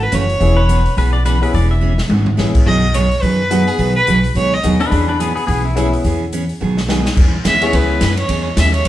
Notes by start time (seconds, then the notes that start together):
0.03 B4
0.12 F#1 C#3 E3 A3 C#4 F#4 C#5, cross-stick, closed hi-hat
0.29 open hi-hat
0.40 E1 E3 B3 C#4 E4 G#4, kick, open hi-hat
0.57 B4
0.69 E3 B3 C#4 G#4, closed hi-hat
0.86 open hi-hat
0.97 B1 E3 B3 C#4 G#4 B4, kick, open hi-hat
1.13 D5
1.25 E3 B3 C#4 G#4 B4, cross-stick, closed hi-hat
1.41 B3 C#4 E4 G#4 B4, open hi-hat
1.54 E1 E3 B3 C#4 G#4 D5, kick, open hi-hat
1.71 E5
1.81 E3 B3 C#4 G#4
1.98 snare
2.09 G#1 E3 B3 C#4 G#4, high tom
2.26 floor tom
2.37 A1 E3 B3 C#4 E4 G#4, snare
2.55 kick, crash
2.66 B1 B2 D#3 F#3 B3 D#4 G#4 D#5, kick
2.94 B2 D#3 F#3 B3 D#4 G#4 C#5, closed hi-hat
3.11 open hi-hat
3.22 F#2 B2 D#3 F#3 B3 D#4 G#4 B4, kick, open hi-hat
3.50 B2 D#3 F#3 B3 D#4 F#4 G#4, cross-stick, closed hi-hat
3.68 G#4, open hi-hat
3.78 B1 B2 D#3 F#3 B3 D#4 G#4 B4, kick, open hi-hat
3.96 B4
4.07 B1 B2 D#3 F#3 B3 D#4 G#4, closed hi-hat
4.24 open hi-hat
4.35 C#2 B2 D#3 F#3 B3 D#4 G#4 C#5, kick, open hi-hat
4.54 D#5
4.63 D#2 B2 D#3 F#3 B3 D#4 F#4 G#4, cross-stick, closed hi-hat
4.80 D#4 B4, open hi-hat
4.90 E2 E3 B3 C#4 D4 G#4 B4, kick, open hi-hat
5.08 D4 B4
5.20 E3 B3 C#4 G#4, closed hi-hat
5.35 B3 G#4, open hi-hat
5.47 B1 E3 B3 C#4 G#4, kick, open hi-hat
5.65 E4
5.75 E3 B3 C#4 E4 G#4, cross-stick, closed hi-hat
5.93 open hi-hat
6.04 E2 E3 B3 C#4 G#4, kick, open hi-hat
6.33 E3 B3 C#4 G#4, closed hi-hat
6.49 open hi-hat
6.61 B1 B2 D#3 F#3 B3 D#4 G#4
6.77 snare
6.88 B2 D#3 F#3 B3 D#4 F#4 G#4, snare
7.06 snare
7.16 E2 E3 B3 C#4 G#4, kick, crash
7.44 D#2 E3 B3 C#4 G#4 E5, kick, snare, hi-hat pedal, ride
7.61 G#3 B3 C#4 E4 G#4 C#5, ride
7.72 C#2 E3 B3 C#4 G#4 B4, kick, ride
8.01 F#2 E3 B3 C#4 G#4, kick, snare, hi-hat pedal, ride
8.17 C#5, ride
8.29 E2 E3 B3 C#4 G#4, kick, ride
8.57 D#2 E3 B3 C#4 G#4 E5, kick, snare, hi-hat pedal, ride
8.74 C#5, ride
8.85 C#2, kick, ride